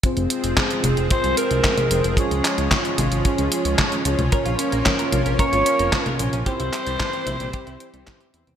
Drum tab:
HH |xxxxxxxxxxxxxxxx|xxxxxxxxxxxxxxxx|xxxxxxxxxxxxxxxx|xxxxxxxxxxxxxxxx|
CP |----x-------x---|--x-x-------x---|----x-------x---|--x-x-------x---|
SD |----o-------o---|----o-------o---|----o-------o---|----o-------o---|
CG |------o------o--|------o--------o|------o------o--|------o--------o|
BD |o---o---o---o---|o---o---o---o---|o---o---o---o---|o---o---o---o---|